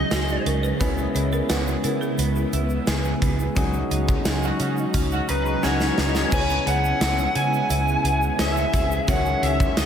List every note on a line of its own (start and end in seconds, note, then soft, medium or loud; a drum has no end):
0.00 6.28 C#3 medium
0.00 0.78 F#3 medium
0.00 0.80 F#3 medium
0.00 6.28 G#3 medium
0.00 0.46 C#4 medium
0.00 0.76 C#4 medium
0.00 0.76 D#4 medium
0.00 0.78 D#4 medium
0.00 0.87 D#4 medium
0.00 0.76 F#4 medium
0.00 0.11 G#4 medium
0.00 0.77 G#4 medium
0.00 0.42 D#5 medium
0.11 0.36 C#2 loud
0.11 0.47 F#4 medium
0.11 1.49 G#4 medium
0.11 snare loud
0.11 closed hi-hat medium
0.11 tambourine medium
0.11 shaker medium
0.28 shaker soft
0.46 0.71 C#2 medium
0.46 0.80 C#4 medium
0.46 0.64 A#4 loud
0.46 closed hi-hat medium
0.63 0.81 B4 loud
0.63 shaker soft
0.79 1.05 C#2 loud
0.79 3.52 B3 medium
0.79 3.53 B3 medium
0.79 2.18 B3 medium
0.79 3.52 C#4 medium
0.79 3.53 E4 medium
0.79 3.53 G#4 medium
0.79 0.96 C#5 loud
0.79 kick loud
0.79 closed hi-hat medium
0.79 shaker medium
0.97 shaker soft
1.15 1.40 C#2 loud
1.15 1.83 E4 medium
1.15 1.33 C#5 medium
1.15 closed hi-hat medium
1.15 shaker soft
1.32 1.50 A#4 loud
1.32 shaker soft
1.49 1.74 C#2 loud
1.49 1.67 F#4 medium
1.49 1.81 B4 loud
1.49 snare loud
1.49 closed hi-hat medium
1.49 tambourine medium
1.49 shaker medium
1.67 2.87 G#4 medium
1.67 shaker medium
1.84 2.09 C#3 loud
1.84 2.52 E4 medium
1.84 1.92 A#4 medium
1.84 closed hi-hat medium
1.84 shaker soft
2.01 3.35 G#4 medium
2.01 shaker soft
2.18 2.43 C#2 loud
2.18 3.21 B3 medium
2.18 closed hi-hat loud
2.18 shaker medium
2.36 shaker soft
2.53 2.77 C#2 loud
2.53 3.63 E4 medium
2.53 closed hi-hat medium
2.53 shaker soft
2.69 shaker soft
2.87 3.12 C#2 loud
2.87 4.25 G#4 medium
2.87 snare loud
2.87 closed hi-hat medium
2.87 tambourine medium
2.87 shaker medium
3.04 shaker soft
3.22 3.47 C#2 medium
3.22 3.63 B3 medium
3.22 kick medium
3.22 closed hi-hat medium
3.39 shaker soft
3.55 3.81 C#2 loud
3.55 6.33 F#3 medium
3.55 6.30 F#3 medium
3.55 5.59 C#4 medium
3.55 5.59 D#4 medium
3.55 6.30 D#4 medium
3.55 5.60 F#4 medium
3.55 5.60 G#4 medium
3.55 kick loud
3.55 closed hi-hat medium
3.55 shaker medium
3.73 shaker soft
3.91 4.16 C#2 loud
3.91 4.59 D#4 medium
3.91 closed hi-hat medium
3.91 shaker soft
4.08 kick medium
4.08 shaker medium
4.25 4.50 C#2 loud
4.25 5.63 G#4 medium
4.25 snare loud
4.25 closed hi-hat medium
4.25 tambourine medium
4.25 shaker medium
4.43 4.57 C#4 medium
4.43 4.57 D#4 medium
4.43 4.57 F#4 medium
4.43 shaker medium
4.60 4.84 C#3 loud
4.60 4.75 C#4 medium
4.60 5.28 D#4 medium
4.60 4.75 D#4 medium
4.60 4.75 F#4 medium
4.60 closed hi-hat medium
4.60 shaker soft
4.77 shaker soft
4.94 5.19 C#2 loud
4.94 5.97 C#4 medium
4.94 kick medium
4.94 closed hi-hat medium
4.94 shaker medium
5.11 5.26 C#4 medium
5.11 5.26 D#4 medium
5.11 5.26 F#4 medium
5.11 shaker soft
5.28 5.54 C#2 medium
5.28 6.39 D#4 medium
5.28 5.64 B4 medium
5.28 5.61 A#5 medium
5.28 closed hi-hat medium
5.28 shaker medium
5.46 shaker soft
5.62 5.88 C#2 loud
5.62 6.29 C#4 medium
5.62 5.85 C#4 loud
5.62 6.32 D#4 medium
5.62 5.85 D#4 medium
5.62 6.32 F#4 medium
5.62 5.85 F#4 loud
5.62 6.30 G#4 medium
5.62 6.32 G#4 medium
5.62 6.35 C#5 medium
5.62 5.84 G#5 medium
5.62 snare medium
5.62 shaker medium
5.80 snare medium
5.80 shaker soft
5.86 6.08 F#5 medium
5.98 6.23 C#2 medium
5.98 6.32 C#4 medium
5.98 snare medium
6.09 6.31 D#5 medium
6.15 snare medium
6.15 shaker medium
6.31 6.57 C#2 loud
6.31 9.05 C#3 medium
6.31 9.86 G#3 medium
6.31 9.05 B3 medium
6.31 6.66 B3 medium
6.31 8.34 C#4 medium
6.31 8.35 E4 medium
6.31 9.05 E4 medium
6.31 8.35 G#4 medium
6.31 7.35 G#4 medium
6.31 8.35 B4 medium
6.31 6.39 C5 medium
6.31 6.67 G#5 loud
6.31 kick loud
6.31 crash loud
6.31 shaker medium
6.40 8.39 C#5 medium
6.49 shaker soft
6.66 6.91 C#2 loud
6.66 9.15 B3 medium
6.66 7.36 F#5 loud
6.66 closed hi-hat medium
6.84 shaker medium
7.01 7.26 C#2 loud
7.01 7.69 E4 medium
7.01 snare loud
7.01 closed hi-hat medium
7.01 tambourine medium
7.01 shaker medium
7.18 shaker medium
7.35 7.60 C#3 loud
7.35 8.04 G#4 medium
7.35 8.42 G#5 loud
7.35 closed hi-hat medium
7.53 shaker soft
7.70 7.95 C#2 loud
7.70 8.38 E4 medium
7.70 closed hi-hat loud
7.70 shaker medium
7.88 shaker soft
8.04 8.29 C#2 loud
8.04 8.73 G#4 medium
8.04 closed hi-hat medium
8.22 shaker soft
8.38 8.64 C#2 loud
8.38 9.06 C#4 medium
8.38 9.08 E4 soft
8.38 9.15 E4 medium
8.38 9.08 G#4 soft
8.38 9.08 B4 soft
8.38 8.46 C5 soft
8.38 9.04 E5 loud
8.38 snare loud
8.38 closed hi-hat medium
8.38 tambourine medium
8.38 shaker medium
8.46 9.08 C#5 medium
8.57 shaker medium
8.73 8.98 C#2 medium
8.73 9.08 G#4 medium
8.73 kick medium
8.73 closed hi-hat medium
8.73 shaker medium
8.91 shaker medium
9.07 9.33 C#2 loud
9.07 9.86 D#3 medium
9.07 9.86 F#3 medium
9.07 9.86 C#4 medium
9.07 9.86 F#4 medium
9.07 9.86 G#4 medium
9.07 9.86 C#5 medium
9.07 9.44 F#5 loud
9.07 kick loud
9.07 closed hi-hat medium
9.07 shaker medium
9.26 shaker soft
9.42 9.67 C#2 loud
9.42 9.86 C#4 medium
9.42 9.75 E5 loud
9.42 closed hi-hat medium
9.60 kick loud
9.60 shaker medium
9.77 9.86 C#2 loud
9.77 9.86 D#4 medium
9.77 9.86 D#5 medium
9.77 snare loud
9.77 closed hi-hat medium
9.77 tambourine medium
9.77 shaker medium